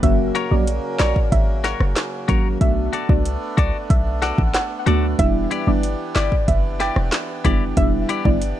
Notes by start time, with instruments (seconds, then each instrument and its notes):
0.03 808-style bass F#1, harmonium C#3 F#3 A#3, synth stab F#3 A#3 C#4 F#4, synth pluck E5, kick, closed hi-hat
0.35 clean electric guitar F#4 A#4 C#5, closed hi-hat
0.51 808-style bass A#1, synth stab F#3 A#3 C#4 F#4, synth pluck D5
0.67 closed hi-hat
0.99 808-style bass A#1, clean electric guitar F#4 A#4 C#5, synth pluck D5, snare, clap, closed hi-hat
1.16 kick
1.32 808-style bass G#1, synth pluck E5, kick, closed hi-hat
1.64 clean electric guitar F#4 A#4 C#5, synth pluck F#5, snare, closed hi-hat
1.80 808-style bass F#1, cross-stick
1.96 snare, clap, closed hi-hat
2.28 808-style bass G#1, synth stab F#3 A#3 C#4 F#4, clean electric guitar F#4 A#4 C#5, kick, closed hi-hat
2.61 808-style bass B1, synth stab A3 B3 D4 F#4, harmonium A3 B3 D4, synth pluck E5, kick, closed hi-hat
2.93 clean electric guitar F#4 A4 D5, closed hi-hat
3.09 808-style bass C2, synth stab A3 B3 D4 F#4, synth pluck D5, kick
3.25 closed hi-hat
3.57 808-style bass C2, clean electric guitar F#4 A4 D5, synth pluck D5, kick, closed hi-hat
3.90 808-style bass B1, synth pluck E5, kick, closed hi-hat
4.22 clean electric guitar F#4 A4 D5, synth pluck F#5, snare, closed hi-hat
4.38 808-style bass A1, kick
4.54 synth pluck F#5, snare, clap, closed hi-hat
4.86 808-style bass D2, synth stab A3 B3 D4 F#4, clean electric guitar F#4 A4 D5, closed hi-hat
5.19 808-style bass E1, harmonium E3 G4, synth stab G3 B3 D4 E4, synth pluck E5, kick, closed hi-hat
5.51 clean electric guitar E4 G4 D5, closed hi-hat
5.67 808-style bass G1, synth stab G3 B3 D4 E4, synth pluck D5
5.83 closed hi-hat
6.15 808-style bass G1, clean electric guitar E4 G4 D5, synth pluck D5, snare, clap, closed hi-hat
6.32 kick
6.48 808-style bass F#1, synth pluck E5, kick, closed hi-hat
6.80 clean electric guitar E4 G4 D5, synth pluck G5, snare, closed hi-hat
6.96 808-style bass E1, cross-stick
7.12 snare, clap, closed hi-hat
7.44 808-style bass F#1, synth stab G3 B3 D4 E4, clean electric guitar E4 G4 D5, kick, closed hi-hat
7.77 808-style bass E1, synth stab G3 B3 D4 E4, synth pluck E5, kick, closed hi-hat
8.09 clean electric guitar E4 G4 D5, closed hi-hat
8.25 808-style bass G1, synth stab G3 B3 D4 E4, synth pluck D5, kick
8.42 closed hi-hat